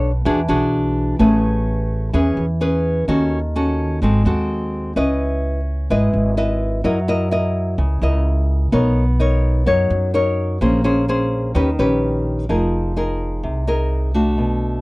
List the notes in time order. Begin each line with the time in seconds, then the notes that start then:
Already playing: B1 B3 D4 A4 C#5
0.25 E2 E3 D4 F#4 G#4
0.48 B1 D4 F#4 G#4
1.19 A1 A3 C#4 G#4 B4
2.13 E2 E3 C#4 G#4 B4
2.37 E2
2.61 C#4 G#4 B4
3.08 D#2 D#3 C#4 F#4 A4
3.56 C#4 F#4 A4
4.02 G#1 G#3 C4 F#4 A4
4.25 D#2 C4 F#4 A4
4.96 C#2 C#4 E4 B4 D#5
5.90 G#1 G#3 E4 B4 D#5
6.13 G#1
6.37 E4 B4 D#5
6.84 F#2 F#3 E4 A#4 D#5
7.08 E4 A#4 D#5
7.31 E4 A#4 D#5
7.78 C#2 C#3
8.02 C#2 E4 A#4 D#5
8.72 B1 B3 D#4 A#4 C#5
9.20 D#4 A#4 C#5
9.66 F#2 F#3 D#4 A#4 C#5
9.90 F#2
10.14 D#4 A#4 C#5
10.61 A#1 A#3 C#4 G#4 C5
10.84 C#4 G#4 C5
11.08 C#4 G#4 C5
11.55 D#2 D#3 C#4 G4 B4
11.79 A#1 C#4 G4 B4
12.49 F1 F3 D#4 G#4 A#4
12.96 D#4 G#4 A#4
13.43 C2 C3
13.67 D#4 G#4 A#4
14.14 A3 D4 F#4
14.38 B1 B2